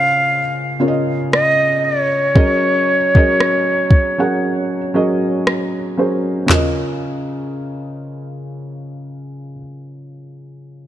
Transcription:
0.00 0.80 C#3 medium
0.00 0.80 C#4 medium
0.00 0.80 F4 medium
0.00 0.81 A#4 medium
0.00 0.88 D#5 loud
0.00 0.80 F5 loud
0.80 2.00 C#3 medium
0.80 2.01 C#4 medium
0.80 2.01 F4 medium
0.80 2.01 A#4 medium
0.80 0.88 C#5 medium
0.88 2.05 D#5 medium
1.33 1.86 D#5 loud
1.33 cross-stick loud
1.85 5.46 C#5 loud
2.35 2.95 F#3 medium
2.35 2.96 C#4 medium
2.35 2.96 G#4 medium
2.35 2.96 A#4 medium
2.35 2.96 D#5 loud
2.35 kick loud
3.15 3.92 F#3 medium
3.15 3.93 C#4 medium
3.15 3.93 G#4 medium
3.15 3.93 A#4 medium
3.15 3.93 D#5 medium
3.15 kick medium
3.40 cross-stick loud
3.91 kick medium
4.18 4.77 F#3 medium
4.18 4.78 C#4 medium
4.18 4.78 G#4 medium
4.18 4.78 A#4 medium
4.18 4.78 F#5 medium
4.94 5.75 F#3 medium
4.94 5.76 C#4 medium
4.94 5.76 G#4 medium
4.94 5.76 A#4 medium
4.94 5.76 D#5 medium
5.47 cross-stick loud
5.97 6.38 F#3 medium
5.97 6.38 C#4 medium
5.97 6.39 G#4 medium
5.97 6.39 A#4 medium
5.97 6.39 C5 medium
6.46 9.52 C#3 medium
6.46 9.54 C#4 medium
6.46 9.56 F4 medium
6.46 clap medium
6.46 floor tom medium
6.51 9.58 A#4 medium
6.51 9.59 D#5 medium
6.51 snare medium

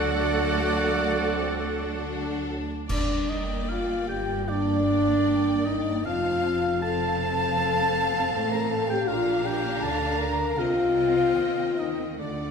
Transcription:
0.00 2.63 D2 medium
0.00 2.63 F#3 medium
0.00 2.50 A3 medium
0.00 2.67 A3 medium
0.00 0.25 D4 medium
0.00 2.54 D4 medium
0.00 0.25 F#4 medium
0.00 2.41 F#4 loud
0.00 2.42 A4 medium
0.00 2.45 A4 medium
0.00 2.54 D5 loud
0.00 2.41 F#5 loud
0.35 0.75 A3 medium
0.78 1.20 A#3 medium
1.19 1.61 C4 medium
1.62 2.88 D4 medium
2.88 6.01 G1 medium
2.88 6.01 G2 medium
2.88 4.45 A#3 medium
2.88 3.26 D4 medium
2.88 4.44 D5 medium
2.88 3.31 D5 medium
2.88 4.44 G5 medium
2.88 concert bass drum medium
2.88 crash medium
3.29 3.69 D#4 medium
3.29 3.71 D#5 medium
3.29 3.70 D#5 medium
3.69 4.09 F4 medium
3.69 4.08 F5 medium
3.69 4.09 F5 medium
4.07 4.47 G4 medium
4.07 4.50 G5 medium
4.48 6.02 A#3 medium
4.48 5.66 D4 loud
4.48 6.02 D5 medium
4.48 5.67 D5 medium
4.48 6.02 G5 medium
5.65 6.05 D#4 medium
5.65 6.05 D#5 medium
5.65 6.07 D#5 medium
6.04 8.29 F1 medium
6.04 8.29 F2 medium
6.04 6.80 C4 medium
6.04 6.81 F4 medium
6.04 6.82 F5 medium
6.04 6.80 F5 loud
6.04 6.81 F5 medium
6.04 6.80 A5 medium
6.81 9.03 C4 medium
6.81 8.51 A4 medium
6.81 9.04 F5 medium
6.81 9.04 A5 medium
6.81 8.53 A5 loud
6.81 8.29 A5 loud
8.33 9.07 A1 medium
8.33 9.07 A2 medium
8.51 8.70 A#4 medium
8.51 8.72 A#5 medium
8.69 8.88 A4 medium
8.69 8.89 A5 medium
8.87 9.07 G4 loud
8.87 9.06 G5 medium
8.87 9.10 G5 medium
9.06 9.80 A#1 medium
9.06 9.80 A#2 medium
9.06 10.55 D4 medium
9.06 9.44 F4 loud
9.06 9.42 F5 medium
9.06 10.55 F5 medium
9.06 9.48 F5 medium
9.06 10.58 A#5 medium
9.43 9.80 G4 medium
9.43 9.83 G5 medium
9.43 9.85 G5 medium
9.81 10.58 D2 medium
9.81 10.58 D3 medium
9.81 10.19 A4 medium
9.81 10.20 A5 medium
9.81 10.22 A5 medium
10.18 10.57 A#4 medium
10.18 10.58 A#5 medium
10.18 10.60 A#5 medium
10.57 11.36 C2 medium
10.57 11.35 C3 medium
10.57 12.17 C4 medium
10.57 11.77 F4 loud
10.57 12.19 D#5 medium
10.57 11.79 F5 medium
10.57 11.81 F5 medium
10.57 12.19 G5 medium
11.37 12.20 D#2 medium
11.37 12.19 D#3 medium
11.77 12.06 D#4 medium
11.77 12.18 D#5 medium
11.77 12.08 D#5 medium
12.18 12.51 D2 medium
12.18 12.51 D3 medium
12.18 12.51 A3 medium
12.18 12.51 D4 medium
12.18 12.51 D5 medium
12.18 12.51 F#5 medium

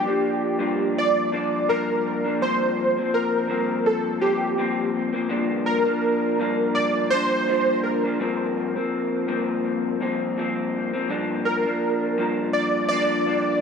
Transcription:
0.00 0.93 G4 medium
0.07 0.58 F3 soft
0.07 0.59 A#3 soft
0.07 0.59 D4 soft
0.58 1.31 G2 medium
0.58 1.32 F3 medium
0.58 1.33 A#3 medium
0.58 1.32 D4 medium
0.98 1.72 D5 medium
1.32 1.66 G2 medium
1.32 1.67 F3 medium
1.32 1.68 A#3 medium
1.32 1.68 D4 medium
1.67 2.24 G2 medium
1.67 2.25 F3 medium
1.67 2.24 A#3 medium
1.67 2.23 D4 medium
1.67 2.37 A#4 medium
2.24 2.40 F3 soft
2.24 2.41 A#3 soft
2.24 2.41 D4 soft
2.41 2.97 G2 medium
2.41 2.97 F3 medium
2.41 2.97 A#3 medium
2.41 2.96 C4 medium
2.41 3.16 C5 medium
2.97 3.48 F3 soft
2.97 3.49 A#3 soft
2.97 3.49 C4 medium
3.14 3.88 A#4 medium
3.48 4.19 G2 medium
3.48 4.21 F3 medium
3.48 4.21 A#3 medium
3.48 4.21 C4 medium
3.86 4.19 A4 medium
4.20 4.56 G2 medium
4.20 4.57 F3 medium
4.20 4.57 A#3 medium
4.20 4.58 C4 medium
4.20 4.90 G4 medium
4.57 5.14 G2 medium
4.57 5.13 F3 medium
4.57 5.13 A#3 medium
4.57 5.11 C4 medium
5.13 5.28 F3 soft
5.13 5.29 A#3 soft
5.13 5.30 C4 medium
5.29 5.86 G2 medium
5.29 5.86 F3 medium
5.29 5.85 A#3 loud
5.29 5.85 D4 medium
5.66 6.78 A#4 medium
5.86 6.38 F3 soft
5.86 6.39 A#3 soft
5.86 6.39 D4 soft
6.39 7.10 G2 medium
6.39 7.12 F3 medium
6.39 7.12 A#3 medium
6.39 7.12 D4 medium
6.75 7.12 D5 loud
7.10 7.47 G2 medium
7.10 7.47 F3 medium
7.10 7.48 A#3 medium
7.10 7.49 D4 medium
7.10 7.79 C5 loud
7.48 8.04 G2 medium
7.48 8.04 F3 medium
7.48 8.04 A#3 medium
7.48 8.03 D4 medium
7.83 9.97 A#4 medium
8.04 8.19 F3 soft
8.04 8.19 A#3 soft
8.04 8.20 D4 soft
8.19 8.76 G2 medium
8.19 8.76 F3 medium
8.19 8.76 A#3 medium
8.19 8.74 C4 medium
8.76 9.27 F3 soft
8.76 9.28 A#3 medium
8.76 9.28 C4 medium
9.28 9.99 G2 medium
9.28 10.01 F3 medium
9.28 10.02 A#3 medium
9.28 10.01 C4 medium
10.00 10.36 G2 medium
10.00 10.37 F3 medium
10.00 10.37 A#3 medium
10.00 10.38 C4 medium
10.37 10.93 G2 medium
10.37 10.94 F3 medium
10.37 10.93 A#3 medium
10.37 10.92 C4 medium
10.93 11.08 F3 soft
10.93 11.09 A#3 medium
10.93 11.09 C4 medium
11.09 11.65 G2 medium
11.09 11.66 F3 medium
11.09 11.65 A#3 medium
11.09 11.63 D4 medium
11.45 12.50 A#4 medium
11.65 12.17 F3 soft
11.65 12.18 A#3 soft
11.65 12.18 D4 medium
12.18 12.90 G2 medium
12.18 12.91 F3 medium
12.18 12.91 A#3 medium
12.18 12.91 D4 medium
12.53 12.87 D5 medium
12.89 13.25 G2 medium
12.89 13.26 F3 medium
12.89 13.26 A#3 medium
12.89 13.61 D5 loud
12.93 13.27 D4 medium
13.26 13.61 G2 medium
13.26 13.61 F3 medium
13.26 13.61 A#3 medium
13.26 13.61 D4 medium

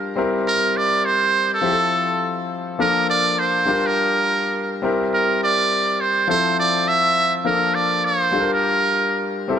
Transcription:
0.00 0.14 G3 medium
0.00 0.14 D4 medium
0.00 0.14 F4 medium
0.00 0.15 A#4 medium
0.16 1.59 G3 medium
0.16 1.59 C4 medium
0.16 1.60 E4 medium
0.16 1.60 A#4 medium
0.48 0.78 A#4 loud
0.77 1.07 D5 loud
1.05 1.53 C5 loud
1.54 2.36 A4 medium
1.62 2.76 F3 medium
1.62 2.76 C4 medium
1.62 2.77 E4 medium
1.62 1.71 G4 medium
1.70 2.78 A4 medium
2.79 3.66 F3 medium
2.79 3.66 A#3 medium
2.79 3.65 D4 medium
2.79 3.67 A4 medium
2.79 3.07 A#4 loud
3.10 3.40 D5 loud
3.39 3.88 C5 medium
3.65 4.80 G3 medium
3.65 4.80 D4 medium
3.65 4.81 F4 medium
3.65 4.81 A#4 medium
3.86 4.73 A#4 medium
4.82 6.25 G3 medium
4.82 6.25 C4 medium
4.82 6.26 E4 medium
4.82 6.26 A#4 medium
5.14 5.40 A#4 medium
5.43 6.02 D5 loud
6.01 6.29 C5 medium
6.28 7.42 F3 medium
6.28 7.42 C4 medium
6.28 7.43 E4 medium
6.28 7.43 A4 medium
6.28 6.56 C5 loud
6.59 6.89 D5 loud
6.88 7.35 E5 loud
7.44 8.32 F3 medium
7.44 8.32 A#3 medium
7.44 8.31 D4 medium
7.44 8.32 A4 medium
7.44 7.76 A#4 medium
7.74 8.06 D5 loud
8.05 8.22 C#5 loud
8.22 8.52 C5 loud
8.31 9.46 G3 medium
8.31 9.46 D4 medium
8.31 9.47 F4 medium
8.31 8.41 A4 medium
8.40 9.50 A#4 medium
8.53 9.35 A#4 medium
9.48 9.59 G3 medium
9.48 9.59 C4 medium
9.48 9.59 E4 medium
9.48 9.58 A4 medium

